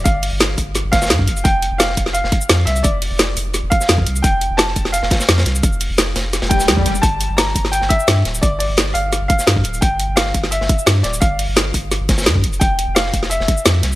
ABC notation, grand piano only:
X:1
M:4/4
L:1/8
Q:1/4=172
K:F
V:1 name="Grand piano"
f3 z2 f3 | g2 f2 f3 e | d3 z2 f3 | g2 a2 f4- |
f4- f g3 | a2 b2 g e2 z | d d2 f2 f3 | g2 f2 e3 d |
f3 z4 z | g2 f2 e4 |]